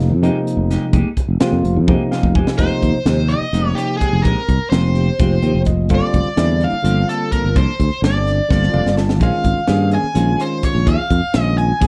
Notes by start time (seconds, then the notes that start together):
Already playing: F1 C3 F3 A#3 D#4
0.00 snare, closed hi-hat
0.10 F2
0.22 C3 F3 G#3 A#3 D#4 G4, closed hi-hat
0.47 closed hi-hat
0.57 F1
0.70 G#3 A#3 D#4 G4, snare, closed hi-hat
0.93 F1 G#3 A#3 D#4 G4, kick, closed hi-hat
1.17 muted fretless electric bass stroke, kick, closed hi-hat
1.28 F1
1.40 C3 F3 G#3 A#3 D#4 F4 G4, snare, closed hi-hat
1.53 F2
1.64 F1, closed hi-hat
1.76 F2
1.87 C3 F3 G#3 A#3 D#4 G4, kick, high tom
2.11 A#3 D#4 G4 F5, snare
2.23 F1, kick
2.35 G#3 A#3 D#4 G4 G#5, kick
2.47 snare
2.58 F1 C3 F3 G#3 A#3 C4 D#4 G4 C5, kick, closed hi-hat
2.82 D#2, kick, closed hi-hat
2.95 muted fretless electric bass stroke
3.05 D#2 C3 F3 G#3 A#3 C4 D#4 G4, snare, closed hi-hat
3.29 C4 D#4 G4 D#5, closed hi-hat
3.41 muted fretless electric bass stroke
3.53 F1 C3 F3 G#3 A#3 C4 D#4 G4, closed hi-hat
3.75 C4 D#4 G4, snare, closed hi-hat
3.97 G#3 C4 D#4 G4 G#4, closed hi-hat
4.01 kick
4.13 F1
4.22 A#1 G#3 C4 D#4 G4 A#4, kick, closed hi-hat
4.48 C2, kick, closed hi-hat
4.70 F1 C3 F3 G#3 A#3 C4 D#4 G4 C5, snare, closed hi-hat
4.95 C4 D#4 G4, closed hi-hat
5.18 F1 C3 F3 G#3 A#3 C4 D#4 F4 G4, kick, closed hi-hat
5.42 D#2 C4 D#4 G4 G5, closed hi-hat
5.54 F1
5.65 D#5, kick, closed hi-hat
5.89 G1 D3 F3 G3 A#3 C4 D4 F4 A4, kick, closed hi-hat
5.94 D5
6.13 F1, kick, closed hi-hat
6.26 muted fretless electric bass stroke
6.36 E2 D3 F3 G3 A#3 C4 D4 E4 A4, snare, closed hi-hat
6.61 A#3 D4 A4 F5, closed hi-hat
6.73 muted fretless electric bass stroke
6.82 G1 D3 F3 G3 A#3 C4 D4 F4 A4, closed hi-hat
7.08 A#3 D4 A4, closed hi-hat
7.31 F3 A#3 D4 A4 A#4, kick, closed hi-hat
7.44 G1
7.55 C2 F3 A#3 D4 A4 C5, kick, closed hi-hat
7.80 D2, kick, closed hi-hat
7.91 muted fretless electric bass stroke
8.02 G1 D3 F3 G3 A#3 C4 D4 A4 D5, snare, closed hi-hat
8.27 snare, closed hi-hat
8.49 G1 D3 F3 G3 A#3 C4 D4 F4 A4, kick, snare
8.63 snare
8.73 F1 A#3 D4 A4 F5, mid tom
8.86 G1, snare
8.97 A5, snare
9.09 snare
9.20 A#1 D#3 F3 G#3 C4 C#4 F4 G#4 F5, kick, closed hi-hat
9.44 G#1, kick, closed hi-hat
9.58 muted fretless electric bass stroke
9.67 G2 D#3 F3 A#3 C4 C#4 G#4, snare, closed hi-hat
9.91 C4 C#4 G#4 G#5, closed hi-hat
10.04 muted fretless electric bass stroke
10.15 A#1 D#3 F3 G#3 C4 C#4 F4 G#4, closed hi-hat
10.37 C4 C#4 G#4 C5, closed hi-hat
10.63 C#5, kick, snare, closed hi-hat
10.75 A#1
10.86 D#2 F3 C4 C#4 G#4 F5, kick, closed hi-hat
11.10 F2, kick, closed hi-hat
11.24 muted fretless electric bass stroke
11.33 A#1 D#3 F3 G#3 C4 C#4 F4 G#4, snare, closed hi-hat
11.42 D#5
11.58 G#5, closed hi-hat
11.80 A#1 D#3 F3 G#3 C4 C#4 G#4, kick, closed hi-hat